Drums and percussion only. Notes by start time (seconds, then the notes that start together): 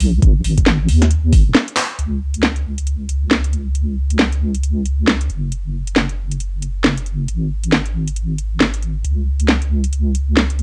0.00 open hi-hat
0.22 kick, closed hi-hat
0.44 open hi-hat
0.58 kick, closed hi-hat
0.66 snare
0.88 open hi-hat
1.02 snare, closed hi-hat
1.11 closed hi-hat
1.33 kick, open hi-hat
1.55 snare
1.68 closed hi-hat
1.77 clap, open hi-hat
1.99 closed hi-hat
2.34 closed hi-hat
2.43 snare
2.56 closed hi-hat
2.78 closed hi-hat
2.87 closed hi-hat
3.09 closed hi-hat
3.31 snare
3.44 closed hi-hat
3.53 closed hi-hat
3.75 closed hi-hat
4.11 closed hi-hat
4.19 snare
4.33 closed hi-hat
4.55 closed hi-hat
4.63 closed hi-hat
4.86 closed hi-hat
5.08 snare
5.21 closed hi-hat
5.30 closed hi-hat
5.52 closed hi-hat
5.87 closed hi-hat
5.96 snare
6.09 closed hi-hat
6.31 closed hi-hat
6.40 closed hi-hat
6.62 closed hi-hat
6.84 snare
6.97 closed hi-hat
7.06 closed hi-hat
7.28 closed hi-hat
7.63 closed hi-hat
7.72 snare
7.86 closed hi-hat
8.08 closed hi-hat
8.16 closed hi-hat
8.38 closed hi-hat
8.61 snare
8.74 closed hi-hat
8.83 closed hi-hat
9.05 closed hi-hat
9.40 closed hi-hat
9.49 snare
9.62 closed hi-hat
9.84 closed hi-hat
9.93 closed hi-hat
10.15 closed hi-hat
10.37 snare
10.50 closed hi-hat
10.59 closed hi-hat